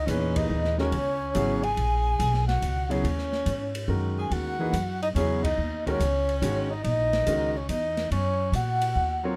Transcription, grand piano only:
0, 0, Header, 1, 2, 480
1, 0, Start_track
1, 0, Tempo, 423131
1, 566, Time_signature, 3, 2, 24, 8
1, 10621, End_track
2, 0, Start_track
2, 0, Title_t, "Grand piano"
2, 0, Program_c, 0, 0
2, 77, Note_on_c, 0, 52, 64
2, 85, Note_on_c, 0, 46, 59
2, 89, Note_on_c, 0, 63, 58
2, 95, Note_on_c, 0, 68, 58
2, 98, Note_on_c, 0, 71, 72
2, 822, Note_off_c, 0, 52, 0
2, 825, Note_off_c, 0, 46, 0
2, 828, Note_off_c, 0, 63, 0
2, 831, Note_off_c, 0, 68, 0
2, 832, Note_off_c, 0, 71, 0
2, 888, Note_on_c, 0, 51, 58
2, 893, Note_on_c, 0, 56, 56
2, 901, Note_on_c, 0, 61, 53
2, 905, Note_on_c, 0, 70, 65
2, 908, Note_on_c, 0, 66, 55
2, 1031, Note_off_c, 0, 51, 0
2, 1033, Note_off_c, 0, 56, 0
2, 1037, Note_off_c, 0, 61, 0
2, 1039, Note_off_c, 0, 70, 0
2, 1040, Note_off_c, 0, 66, 0
2, 1523, Note_on_c, 0, 49, 67
2, 1530, Note_on_c, 0, 54, 62
2, 1536, Note_on_c, 0, 59, 57
2, 1540, Note_on_c, 0, 64, 61
2, 1546, Note_on_c, 0, 68, 75
2, 1817, Note_off_c, 0, 49, 0
2, 1821, Note_off_c, 0, 54, 0
2, 1824, Note_off_c, 0, 59, 0
2, 1826, Note_off_c, 0, 64, 0
2, 1829, Note_off_c, 0, 68, 0
2, 3280, Note_on_c, 0, 49, 62
2, 3290, Note_on_c, 0, 54, 62
2, 3292, Note_on_c, 0, 59, 61
2, 3299, Note_on_c, 0, 64, 57
2, 3306, Note_on_c, 0, 68, 73
2, 3428, Note_off_c, 0, 49, 0
2, 3432, Note_off_c, 0, 54, 0
2, 3434, Note_off_c, 0, 59, 0
2, 3437, Note_off_c, 0, 64, 0
2, 3441, Note_off_c, 0, 68, 0
2, 4400, Note_on_c, 0, 51, 56
2, 4400, Note_on_c, 0, 56, 51
2, 4406, Note_on_c, 0, 61, 53
2, 4414, Note_on_c, 0, 66, 50
2, 4418, Note_on_c, 0, 70, 59
2, 5144, Note_off_c, 0, 51, 0
2, 5145, Note_off_c, 0, 56, 0
2, 5147, Note_off_c, 0, 61, 0
2, 5151, Note_off_c, 0, 66, 0
2, 5154, Note_off_c, 0, 70, 0
2, 5211, Note_on_c, 0, 52, 64
2, 5214, Note_on_c, 0, 58, 57
2, 5223, Note_on_c, 0, 63, 60
2, 5227, Note_on_c, 0, 68, 59
2, 5232, Note_on_c, 0, 71, 70
2, 5353, Note_off_c, 0, 52, 0
2, 5355, Note_off_c, 0, 58, 0
2, 5359, Note_off_c, 0, 63, 0
2, 5362, Note_off_c, 0, 68, 0
2, 5364, Note_off_c, 0, 71, 0
2, 5853, Note_on_c, 0, 49, 65
2, 5862, Note_on_c, 0, 54, 59
2, 5864, Note_on_c, 0, 59, 59
2, 5870, Note_on_c, 0, 64, 61
2, 5877, Note_on_c, 0, 68, 75
2, 6143, Note_off_c, 0, 49, 0
2, 6147, Note_off_c, 0, 54, 0
2, 6148, Note_off_c, 0, 59, 0
2, 6151, Note_off_c, 0, 64, 0
2, 6155, Note_off_c, 0, 68, 0
2, 6650, Note_on_c, 0, 56, 61
2, 6651, Note_on_c, 0, 51, 64
2, 6657, Note_on_c, 0, 61, 61
2, 6664, Note_on_c, 0, 66, 62
2, 6670, Note_on_c, 0, 70, 75
2, 6793, Note_off_c, 0, 51, 0
2, 6793, Note_off_c, 0, 56, 0
2, 6796, Note_off_c, 0, 61, 0
2, 6800, Note_off_c, 0, 66, 0
2, 6803, Note_off_c, 0, 70, 0
2, 7283, Note_on_c, 0, 51, 64
2, 7290, Note_on_c, 0, 56, 60
2, 7291, Note_on_c, 0, 61, 57
2, 7298, Note_on_c, 0, 66, 56
2, 7302, Note_on_c, 0, 73, 72
2, 7578, Note_off_c, 0, 51, 0
2, 7581, Note_off_c, 0, 56, 0
2, 7581, Note_off_c, 0, 61, 0
2, 7585, Note_off_c, 0, 66, 0
2, 7587, Note_off_c, 0, 73, 0
2, 8240, Note_on_c, 0, 51, 57
2, 8247, Note_on_c, 0, 56, 58
2, 8251, Note_on_c, 0, 61, 58
2, 8253, Note_on_c, 0, 66, 55
2, 8263, Note_on_c, 0, 70, 65
2, 8535, Note_off_c, 0, 51, 0
2, 8539, Note_off_c, 0, 56, 0
2, 8541, Note_off_c, 0, 61, 0
2, 8542, Note_off_c, 0, 66, 0
2, 8547, Note_off_c, 0, 70, 0
2, 10476, Note_on_c, 0, 54, 67
2, 10482, Note_on_c, 0, 60, 59
2, 10486, Note_on_c, 0, 65, 63
2, 10494, Note_on_c, 0, 70, 59
2, 10495, Note_on_c, 0, 73, 71
2, 10621, Note_off_c, 0, 54, 0
2, 10621, Note_off_c, 0, 60, 0
2, 10621, Note_off_c, 0, 65, 0
2, 10621, Note_off_c, 0, 70, 0
2, 10621, Note_off_c, 0, 73, 0
2, 10621, End_track
0, 0, End_of_file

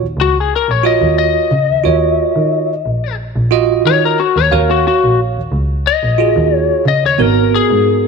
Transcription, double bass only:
0, 0, Header, 1, 2, 480
1, 0, Start_track
1, 0, Key_signature, -6, "minor"
1, 0, Tempo, 668151
1, 1330, Time_signature, 4, 2, 24, 8
1, 5802, End_track
2, 0, Start_track
2, 0, Title_t, "Double bass"
2, 0, Program_c, 0, 43
2, 10, Note_on_c, 0, 39, 38
2, 118, Note_off_c, 0, 39, 0
2, 122, Note_on_c, 0, 37, 83
2, 323, Note_off_c, 0, 37, 0
2, 490, Note_on_c, 0, 34, 79
2, 689, Note_off_c, 0, 34, 0
2, 729, Note_on_c, 0, 39, 88
2, 929, Note_off_c, 0, 39, 0
2, 1086, Note_on_c, 0, 49, 93
2, 1191, Note_off_c, 0, 49, 0
2, 1217, Note_on_c, 0, 39, 36
2, 1323, Note_off_c, 0, 39, 0
2, 1331, Note_on_c, 0, 39, 96
2, 1528, Note_off_c, 0, 39, 0
2, 1692, Note_on_c, 0, 51, 82
2, 1985, Note_off_c, 0, 51, 0
2, 2053, Note_on_c, 0, 34, 78
2, 2353, Note_off_c, 0, 34, 0
2, 2412, Note_on_c, 0, 34, 80
2, 2705, Note_off_c, 0, 34, 0
2, 2770, Note_on_c, 0, 51, 90
2, 2968, Note_off_c, 0, 51, 0
2, 3133, Note_on_c, 0, 39, 85
2, 3229, Note_off_c, 0, 39, 0
2, 3247, Note_on_c, 0, 39, 95
2, 3446, Note_off_c, 0, 39, 0
2, 3618, Note_on_c, 0, 34, 82
2, 3814, Note_off_c, 0, 34, 0
2, 3852, Note_on_c, 0, 39, 35
2, 3961, Note_off_c, 0, 39, 0
2, 3966, Note_on_c, 0, 37, 84
2, 4165, Note_off_c, 0, 37, 0
2, 4332, Note_on_c, 0, 34, 83
2, 4531, Note_off_c, 0, 34, 0
2, 4571, Note_on_c, 0, 39, 89
2, 4770, Note_off_c, 0, 39, 0
2, 4924, Note_on_c, 0, 49, 90
2, 5029, Note_off_c, 0, 49, 0
2, 5050, Note_on_c, 0, 39, 38
2, 5159, Note_off_c, 0, 39, 0
2, 5166, Note_on_c, 0, 32, 98
2, 5364, Note_off_c, 0, 32, 0
2, 5535, Note_on_c, 0, 44, 83
2, 5802, Note_off_c, 0, 44, 0
2, 5802, End_track
0, 0, End_of_file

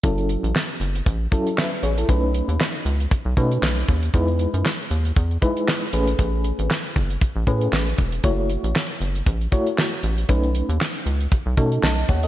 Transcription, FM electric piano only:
0, 0, Header, 1, 2, 480
1, 0, Start_track
1, 0, Tempo, 512821
1, 34, Time_signature, 4, 2, 24, 8
1, 11490, End_track
2, 0, Start_track
2, 0, Title_t, "FM electric piano"
2, 0, Program_c, 0, 5
2, 32, Note_on_c, 0, 54, 74
2, 37, Note_on_c, 0, 61, 70
2, 38, Note_on_c, 0, 64, 65
2, 42, Note_on_c, 0, 69, 80
2, 560, Note_off_c, 0, 54, 0
2, 563, Note_off_c, 0, 61, 0
2, 563, Note_off_c, 0, 64, 0
2, 565, Note_off_c, 0, 69, 0
2, 1232, Note_on_c, 0, 54, 82
2, 1234, Note_on_c, 0, 61, 69
2, 1237, Note_on_c, 0, 64, 72
2, 1239, Note_on_c, 0, 69, 87
2, 1474, Note_on_c, 0, 76, 60
2, 1476, Note_off_c, 0, 64, 0
2, 1476, Note_off_c, 0, 69, 0
2, 1479, Note_on_c, 0, 71, 52
2, 1635, Note_off_c, 0, 54, 0
2, 1637, Note_off_c, 0, 61, 0
2, 1702, Note_off_c, 0, 76, 0
2, 1705, Note_off_c, 0, 71, 0
2, 1714, Note_on_c, 0, 73, 65
2, 1719, Note_on_c, 0, 68, 57
2, 1841, Note_off_c, 0, 73, 0
2, 1844, Note_off_c, 0, 68, 0
2, 1850, Note_on_c, 0, 69, 65
2, 1855, Note_on_c, 0, 64, 54
2, 1952, Note_on_c, 0, 57, 74
2, 1954, Note_on_c, 0, 61, 69
2, 1956, Note_on_c, 0, 63, 65
2, 1959, Note_on_c, 0, 71, 89
2, 2077, Note_off_c, 0, 69, 0
2, 2080, Note_off_c, 0, 64, 0
2, 2480, Note_off_c, 0, 57, 0
2, 2482, Note_off_c, 0, 61, 0
2, 2482, Note_off_c, 0, 63, 0
2, 2484, Note_off_c, 0, 71, 0
2, 3152, Note_on_c, 0, 57, 84
2, 3155, Note_on_c, 0, 61, 73
2, 3159, Note_on_c, 0, 63, 76
2, 3161, Note_on_c, 0, 71, 90
2, 3555, Note_off_c, 0, 57, 0
2, 3557, Note_off_c, 0, 61, 0
2, 3559, Note_off_c, 0, 63, 0
2, 3560, Note_off_c, 0, 71, 0
2, 3874, Note_on_c, 0, 56, 73
2, 3876, Note_on_c, 0, 63, 75
2, 3877, Note_on_c, 0, 64, 67
2, 3880, Note_on_c, 0, 71, 86
2, 4401, Note_off_c, 0, 56, 0
2, 4402, Note_off_c, 0, 63, 0
2, 4403, Note_off_c, 0, 64, 0
2, 4405, Note_off_c, 0, 71, 0
2, 5070, Note_on_c, 0, 56, 79
2, 5073, Note_on_c, 0, 63, 78
2, 5076, Note_on_c, 0, 64, 73
2, 5077, Note_on_c, 0, 71, 92
2, 5474, Note_off_c, 0, 56, 0
2, 5476, Note_off_c, 0, 63, 0
2, 5477, Note_off_c, 0, 64, 0
2, 5478, Note_off_c, 0, 71, 0
2, 5550, Note_on_c, 0, 57, 82
2, 5552, Note_on_c, 0, 61, 77
2, 5554, Note_on_c, 0, 68, 74
2, 5558, Note_on_c, 0, 71, 96
2, 6326, Note_off_c, 0, 57, 0
2, 6327, Note_off_c, 0, 61, 0
2, 6328, Note_off_c, 0, 68, 0
2, 6330, Note_off_c, 0, 71, 0
2, 6990, Note_on_c, 0, 57, 74
2, 6994, Note_on_c, 0, 61, 73
2, 6996, Note_on_c, 0, 68, 71
2, 6998, Note_on_c, 0, 71, 89
2, 7394, Note_off_c, 0, 57, 0
2, 7396, Note_off_c, 0, 61, 0
2, 7397, Note_off_c, 0, 68, 0
2, 7398, Note_off_c, 0, 71, 0
2, 7709, Note_on_c, 0, 57, 79
2, 7710, Note_on_c, 0, 64, 69
2, 7713, Note_on_c, 0, 66, 66
2, 7715, Note_on_c, 0, 73, 83
2, 8239, Note_off_c, 0, 57, 0
2, 8239, Note_off_c, 0, 64, 0
2, 8241, Note_off_c, 0, 66, 0
2, 8242, Note_off_c, 0, 73, 0
2, 8909, Note_on_c, 0, 57, 78
2, 8911, Note_on_c, 0, 64, 72
2, 8912, Note_on_c, 0, 66, 75
2, 8915, Note_on_c, 0, 73, 92
2, 9314, Note_off_c, 0, 57, 0
2, 9315, Note_off_c, 0, 64, 0
2, 9315, Note_off_c, 0, 66, 0
2, 9317, Note_off_c, 0, 73, 0
2, 9629, Note_on_c, 0, 57, 71
2, 9633, Note_on_c, 0, 61, 70
2, 9634, Note_on_c, 0, 63, 70
2, 9637, Note_on_c, 0, 71, 81
2, 10159, Note_off_c, 0, 57, 0
2, 10161, Note_off_c, 0, 61, 0
2, 10162, Note_off_c, 0, 63, 0
2, 10163, Note_off_c, 0, 71, 0
2, 10829, Note_on_c, 0, 57, 79
2, 10831, Note_on_c, 0, 61, 72
2, 10834, Note_on_c, 0, 63, 74
2, 10838, Note_on_c, 0, 69, 85
2, 11071, Note_on_c, 0, 81, 59
2, 11076, Note_off_c, 0, 69, 0
2, 11077, Note_on_c, 0, 75, 54
2, 11234, Note_off_c, 0, 57, 0
2, 11235, Note_off_c, 0, 61, 0
2, 11236, Note_off_c, 0, 63, 0
2, 11300, Note_off_c, 0, 81, 0
2, 11304, Note_off_c, 0, 75, 0
2, 11314, Note_on_c, 0, 78, 67
2, 11321, Note_on_c, 0, 73, 57
2, 11442, Note_off_c, 0, 78, 0
2, 11445, Note_off_c, 0, 73, 0
2, 11452, Note_on_c, 0, 75, 68
2, 11456, Note_on_c, 0, 69, 55
2, 11490, Note_off_c, 0, 69, 0
2, 11490, Note_off_c, 0, 75, 0
2, 11490, End_track
0, 0, End_of_file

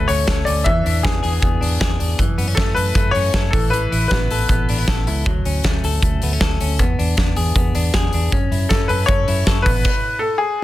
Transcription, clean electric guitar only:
0, 0, Header, 1, 2, 480
1, 0, Start_track
1, 0, Key_signature, 3, "major"
1, 0, Tempo, 382897
1, 832, Time_signature, 4, 2, 24, 8
1, 13337, End_track
2, 0, Start_track
2, 0, Title_t, "Clean electric guitar"
2, 0, Program_c, 0, 27
2, 0, Note_on_c, 0, 54, 75
2, 0, Note_on_c, 0, 57, 59
2, 0, Note_on_c, 0, 69, 59
2, 106, Note_on_c, 0, 61, 51
2, 334, Note_off_c, 0, 69, 0
2, 349, Note_on_c, 0, 69, 62
2, 577, Note_off_c, 0, 61, 0
2, 592, Note_on_c, 0, 61, 50
2, 829, Note_off_c, 0, 54, 0
2, 834, Note_on_c, 0, 52, 80
2, 879, Note_off_c, 0, 57, 0
2, 879, Note_off_c, 0, 69, 0
2, 880, Note_off_c, 0, 61, 0
2, 1081, Note_on_c, 0, 62, 59
2, 1311, Note_on_c, 0, 59, 52
2, 1539, Note_on_c, 0, 68, 59
2, 1772, Note_off_c, 0, 59, 0
2, 1787, Note_on_c, 0, 59, 60
2, 2004, Note_off_c, 0, 62, 0
2, 2019, Note_on_c, 0, 62, 56
2, 2248, Note_off_c, 0, 68, 0
2, 2263, Note_on_c, 0, 68, 61
2, 2486, Note_off_c, 0, 62, 0
2, 2501, Note_on_c, 0, 62, 57
2, 2739, Note_off_c, 0, 52, 0
2, 2744, Note_on_c, 0, 52, 71
2, 2795, Note_off_c, 0, 62, 0
2, 2796, Note_off_c, 0, 68, 0
2, 2798, Note_off_c, 0, 59, 0
2, 2983, Note_on_c, 0, 59, 58
2, 3103, Note_off_c, 0, 59, 0
2, 3103, Note_on_c, 0, 61, 44
2, 3222, Note_on_c, 0, 57, 53
2, 3463, Note_on_c, 0, 69, 58
2, 3710, Note_off_c, 0, 57, 0
2, 3715, Note_on_c, 0, 57, 54
2, 3944, Note_off_c, 0, 61, 0
2, 3959, Note_on_c, 0, 61, 54
2, 4201, Note_off_c, 0, 69, 0
2, 4206, Note_on_c, 0, 69, 56
2, 4423, Note_off_c, 0, 52, 0
2, 4438, Note_on_c, 0, 52, 72
2, 4484, Note_off_c, 0, 61, 0
2, 4662, Note_off_c, 0, 52, 0
2, 4677, Note_on_c, 0, 52, 75
2, 4914, Note_on_c, 0, 64, 56
2, 5157, Note_off_c, 0, 57, 0
2, 5162, Note_on_c, 0, 59, 57
2, 5199, Note_off_c, 0, 69, 0
2, 5406, Note_on_c, 0, 69, 59
2, 5631, Note_off_c, 0, 59, 0
2, 5646, Note_on_c, 0, 59, 57
2, 5874, Note_off_c, 0, 64, 0
2, 5886, Note_on_c, 0, 62, 54
2, 5997, Note_off_c, 0, 62, 0
2, 5997, Note_on_c, 0, 64, 50
2, 6113, Note_off_c, 0, 69, 0
2, 6128, Note_on_c, 0, 69, 59
2, 6344, Note_off_c, 0, 64, 0
2, 6359, Note_on_c, 0, 64, 48
2, 6592, Note_off_c, 0, 52, 0
2, 6597, Note_on_c, 0, 54, 75
2, 6645, Note_off_c, 0, 64, 0
2, 6648, Note_off_c, 0, 59, 0
2, 6649, Note_off_c, 0, 69, 0
2, 6842, Note_on_c, 0, 61, 58
2, 7088, Note_on_c, 0, 57, 49
2, 7328, Note_on_c, 0, 69, 56
2, 7554, Note_off_c, 0, 57, 0
2, 7569, Note_on_c, 0, 57, 51
2, 7798, Note_off_c, 0, 61, 0
2, 7813, Note_on_c, 0, 59, 54
2, 7934, Note_off_c, 0, 59, 0
2, 7934, Note_on_c, 0, 61, 49
2, 8033, Note_off_c, 0, 69, 0
2, 8048, Note_on_c, 0, 69, 60
2, 8269, Note_off_c, 0, 61, 0
2, 8284, Note_on_c, 0, 61, 54
2, 8513, Note_off_c, 0, 57, 0
2, 8515, Note_off_c, 0, 54, 0
2, 8518, Note_on_c, 0, 59, 79
2, 8567, Note_off_c, 0, 61, 0
2, 8569, Note_off_c, 0, 69, 0
2, 8762, Note_on_c, 0, 62, 60
2, 8979, Note_off_c, 0, 59, 0
2, 8994, Note_on_c, 0, 59, 53
2, 9235, Note_on_c, 0, 68, 60
2, 9458, Note_off_c, 0, 59, 0
2, 9473, Note_on_c, 0, 59, 56
2, 9702, Note_off_c, 0, 62, 0
2, 9717, Note_on_c, 0, 62, 58
2, 9951, Note_off_c, 0, 68, 0
2, 9966, Note_on_c, 0, 68, 67
2, 10191, Note_off_c, 0, 62, 0
2, 10206, Note_on_c, 0, 62, 56
2, 10433, Note_off_c, 0, 59, 0
2, 10444, Note_on_c, 0, 61, 75
2, 10487, Note_off_c, 0, 68, 0
2, 10488, Note_off_c, 0, 62, 0
2, 10675, Note_on_c, 0, 64, 57
2, 10906, Note_off_c, 0, 61, 0
2, 10921, Note_on_c, 0, 61, 55
2, 11159, Note_on_c, 0, 69, 56
2, 11387, Note_off_c, 0, 61, 0
2, 11402, Note_on_c, 0, 61, 57
2, 11633, Note_off_c, 0, 64, 0
2, 11638, Note_on_c, 0, 64, 56
2, 11861, Note_off_c, 0, 69, 0
2, 11876, Note_on_c, 0, 69, 63
2, 12116, Note_off_c, 0, 61, 0
2, 12121, Note_on_c, 0, 59, 67
2, 12162, Note_off_c, 0, 69, 0
2, 12405, Note_off_c, 0, 59, 0
2, 13032, Note_off_c, 0, 64, 0
2, 13337, End_track
0, 0, End_of_file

